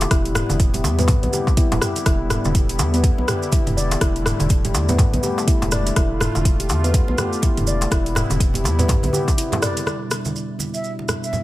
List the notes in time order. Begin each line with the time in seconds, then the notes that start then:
0.01 closed hi-hat, muted conga, darbuka tek, maracas
0.11 E1 C3 G3 B3 E4, kick, cross-stick, closed hi-hat, high conga, maracas
0.25 closed hi-hat
0.35 cross-stick, muted conga, darbuka dum, maracas
0.49 E1, closed hi-hat, darbuka ka, high conga, maracas
0.60 kick, closed hi-hat, maracas
0.74 G4, closed hi-hat, low conga
0.84 E2, muted conga, high conga, darbuka tek, maracas
0.99 B3, closed hi-hat, low conga, maracas
1.08 kick, closed hi-hat, mid tom, darbuka tek, high conga, darbuka dum, maracas
1.23 B1 B3, closed hi-hat, muted conga, high conga
1.33 G4, high conga, maracas
1.47 kick, darbuka tek, maracas
1.57 E4, kick, closed hi-hat, muted conga, maracas
1.72 E1, closed hi-hat, darbuka tek, low conga
1.82 G4, cross-stick, mid tom, maracas
1.96 closed hi-hat, muted conga, maracas
2.06 E1 D3 B3 E4, kick, cross-stick, closed hi-hat, high conga, maracas
2.30 cross-stick, muted conga, darbuka dum, maracas
2.45 E1, darbuka ka, high conga, maracas
2.55 kick, closed hi-hat, maracas
2.69 G4, closed hi-hat
2.79 E2, muted conga, darbuka tek, high conga, maracas
2.94 B3, closed hi-hat, maracas
3.04 kick, closed hi-hat, maracas
3.18 B1 B3, muted conga
3.28 G4, cross-stick, mid tom, low conga, maracas
3.43 maracas
3.52 E4, kick, closed hi-hat, muted conga, low conga, maracas
3.67 E1, closed hi-hat, mid tom, high conga
3.77 D5, high conga, maracas
3.91 closed hi-hat, muted conga, darbuka tek, maracas
4.01 E1 A3 E4, kick, cross-stick, closed hi-hat, high conga, maracas
4.16 closed hi-hat
4.26 cross-stick, muted conga, darbuka dum, maracas
4.40 E1, closed hi-hat, darbuka ka, high conga, maracas
4.49 kick, closed hi-hat, maracas
4.64 G4, closed hi-hat, low conga
4.74 E2, muted conga, high conga, darbuka tek, maracas
4.88 B3, closed hi-hat, low conga, maracas
4.99 kick, closed hi-hat, mid tom, darbuka tek, high conga, darbuka dum, maracas
5.13 B1 B3, closed hi-hat, muted conga, high conga
5.23 G4, high conga, maracas
5.38 darbuka tek, maracas
5.47 E4, kick, closed hi-hat, muted conga, maracas
5.62 E1, closed hi-hat, darbuka tek, low conga
5.72 D5, cross-stick, mid tom, maracas
5.86 closed hi-hat, muted conga, maracas
5.96 E1 E4 F4, kick, cross-stick, closed hi-hat, high conga, maracas
6.20 cross-stick, muted conga, darbuka dum, maracas
6.35 E1, darbuka ka, high conga, maracas
6.45 kick, closed hi-hat, maracas
6.60 G4, closed hi-hat
6.69 E2, muted conga, darbuka tek, high conga, maracas
6.84 B3, closed hi-hat, maracas
6.94 kick, closed hi-hat, maracas
7.08 B1 B3, muted conga
7.18 G4, cross-stick, mid tom, low conga, maracas
7.33 maracas
7.42 E4, kick, closed hi-hat, muted conga, low conga, maracas
7.57 E1, closed hi-hat, mid tom, high conga
7.66 D5, high conga, maracas
7.81 closed hi-hat, muted conga, darbuka tek, maracas
7.91 E1 C3 G3 B3 E4, kick, cross-stick, closed hi-hat, high conga, maracas
8.06 closed hi-hat
8.15 cross-stick, muted conga, darbuka dum, maracas
8.30 E1, closed hi-hat, darbuka ka, high conga, maracas
8.40 kick, closed hi-hat, maracas
8.54 G4, closed hi-hat, low conga
8.64 E2, muted conga, high conga, darbuka tek, maracas
8.79 B3, closed hi-hat, low conga, maracas
8.88 kick, closed hi-hat, mid tom, high conga, darbuka tek, darbuka dum, maracas
9.03 B1 B3, closed hi-hat, muted conga, high conga
9.13 G4, high conga, maracas
9.28 kick, closed hi-hat, darbuka tek, maracas
9.38 E4, closed hi-hat, muted conga, maracas
9.52 closed hi-hat, darbuka tek, low conga
9.62 D5, cross-stick, mid tom, maracas
9.77 closed hi-hat, muted conga, maracas
9.86 B2 G3 D4 E4, cross-stick, high conga, maracas
10.11 cross-stick, muted conga, maracas
10.25 high conga, maracas
10.36 maracas
10.59 muted conga, high conga, maracas
10.74 E5, maracas
10.84 maracas
10.99 muted conga
11.08 cross-stick, low conga, maracas
11.23 E5, maracas
11.33 muted conga, low conga, maracas